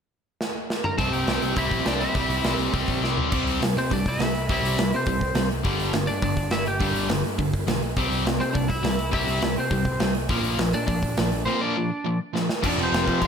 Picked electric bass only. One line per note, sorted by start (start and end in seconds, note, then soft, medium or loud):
0.98 1.08 C2 medium
1.12 1.22 C2 medium
1.28 1.37 C2 medium
1.42 1.52 C2 medium
1.57 1.67 C2 medium
1.71 1.81 A#1 medium
1.87 2.05 C2 medium
2.14 2.24 C2 medium
2.28 2.39 C2 medium
2.44 2.54 C2 medium
2.57 2.67 C2 medium
2.74 2.83 C2 medium
2.89 2.98 A#1 medium
3.00 3.20 C2 medium
3.32 3.45 C2 medium
3.45 3.59 C2 medium
3.60 3.75 C2 medium
3.76 3.90 C3 medium
3.91 4.05 C2 medium
4.05 4.19 C2 medium
4.19 4.47 C2 medium
4.50 4.62 C2 medium
4.62 4.77 C2 medium
4.79 4.92 C2 medium
4.94 5.06 C3 medium
5.07 5.20 C2 medium
5.20 5.34 C2 medium
5.35 5.63 C2 loud
5.65 5.78 G1 medium
5.79 5.93 G1 medium
5.94 6.08 G1 medium
6.10 6.22 G2 medium
6.22 6.37 G1 medium
6.37 6.50 G1 medium
6.51 6.79 G1 medium
6.81 6.94 G1 medium
6.95 7.09 G1 medium
7.10 7.22 G1 medium
7.22 7.37 G2 medium
7.38 7.53 G1 medium
7.54 7.66 G1 medium
7.67 7.95 B1 medium
7.96 8.11 C2 medium
8.11 8.25 C2 medium
8.25 8.40 C2 medium
8.40 8.54 C3 medium
8.55 8.69 C2 medium
8.69 8.82 C2 medium
8.83 9.12 C2 medium
9.13 9.27 C2 medium
9.28 9.42 C2 medium
9.43 9.55 C2 medium
9.56 9.70 C3 medium
9.71 9.85 C2 medium
9.85 10.00 C2 medium
10.01 10.29 C2 medium
10.29 10.42 A#1 medium
10.42 10.57 A#1 medium
10.58 10.72 A#1 medium
10.74 10.87 A#2 medium
10.88 11.02 A#1 medium
11.02 11.17 A#1 medium
11.18 11.46 A#1 medium
12.63 12.72 F1 loud
12.76 12.86 F1 medium
12.92 13.10 F1 loud
13.21 13.27 F1 medium